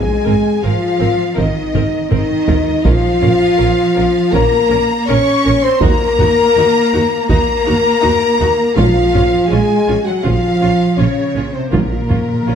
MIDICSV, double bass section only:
0, 0, Header, 1, 2, 480
1, 0, Start_track
1, 0, Key_signature, -5, "minor"
1, 0, Tempo, 739827
1, 1858, Time_signature, 4, 2, 24, 8
1, 8142, End_track
2, 0, Start_track
2, 0, Title_t, "Double bass section"
2, 0, Program_c, 0, 48
2, 179, Note_on_c, 0, 32, 69
2, 231, Note_off_c, 0, 32, 0
2, 421, Note_on_c, 0, 32, 68
2, 473, Note_off_c, 0, 32, 0
2, 657, Note_on_c, 0, 32, 65
2, 709, Note_off_c, 0, 32, 0
2, 896, Note_on_c, 0, 32, 71
2, 948, Note_off_c, 0, 32, 0
2, 1141, Note_on_c, 0, 32, 71
2, 1192, Note_off_c, 0, 32, 0
2, 1384, Note_on_c, 0, 32, 81
2, 1436, Note_off_c, 0, 32, 0
2, 1625, Note_on_c, 0, 32, 72
2, 1677, Note_off_c, 0, 32, 0
2, 1860, Note_on_c, 0, 34, 87
2, 1912, Note_off_c, 0, 34, 0
2, 2103, Note_on_c, 0, 34, 73
2, 2155, Note_off_c, 0, 34, 0
2, 2338, Note_on_c, 0, 34, 81
2, 2390, Note_off_c, 0, 34, 0
2, 2580, Note_on_c, 0, 34, 74
2, 2632, Note_off_c, 0, 34, 0
2, 2826, Note_on_c, 0, 34, 83
2, 2877, Note_off_c, 0, 34, 0
2, 3059, Note_on_c, 0, 34, 79
2, 3111, Note_off_c, 0, 34, 0
2, 3304, Note_on_c, 0, 34, 91
2, 3356, Note_off_c, 0, 34, 0
2, 3547, Note_on_c, 0, 34, 81
2, 3598, Note_off_c, 0, 34, 0
2, 3780, Note_on_c, 0, 39, 90
2, 3832, Note_off_c, 0, 39, 0
2, 4019, Note_on_c, 0, 39, 84
2, 4071, Note_off_c, 0, 39, 0
2, 4257, Note_on_c, 0, 39, 82
2, 4309, Note_off_c, 0, 39, 0
2, 4503, Note_on_c, 0, 39, 75
2, 4555, Note_off_c, 0, 39, 0
2, 4744, Note_on_c, 0, 39, 80
2, 4796, Note_off_c, 0, 39, 0
2, 4986, Note_on_c, 0, 39, 78
2, 5038, Note_off_c, 0, 39, 0
2, 5220, Note_on_c, 0, 39, 89
2, 5272, Note_off_c, 0, 39, 0
2, 5455, Note_on_c, 0, 39, 81
2, 5507, Note_off_c, 0, 39, 0
2, 5695, Note_on_c, 0, 34, 82
2, 5747, Note_off_c, 0, 34, 0
2, 5941, Note_on_c, 0, 34, 74
2, 5993, Note_off_c, 0, 34, 0
2, 6177, Note_on_c, 0, 34, 71
2, 6229, Note_off_c, 0, 34, 0
2, 6416, Note_on_c, 0, 34, 67
2, 6468, Note_off_c, 0, 34, 0
2, 6652, Note_on_c, 0, 34, 72
2, 6704, Note_off_c, 0, 34, 0
2, 6896, Note_on_c, 0, 34, 65
2, 6948, Note_off_c, 0, 34, 0
2, 7128, Note_on_c, 0, 34, 75
2, 7180, Note_off_c, 0, 34, 0
2, 7368, Note_on_c, 0, 34, 67
2, 7420, Note_off_c, 0, 34, 0
2, 7612, Note_on_c, 0, 34, 73
2, 7664, Note_off_c, 0, 34, 0
2, 7850, Note_on_c, 0, 34, 58
2, 7902, Note_off_c, 0, 34, 0
2, 8086, Note_on_c, 0, 34, 62
2, 8138, Note_off_c, 0, 34, 0
2, 8142, End_track
0, 0, End_of_file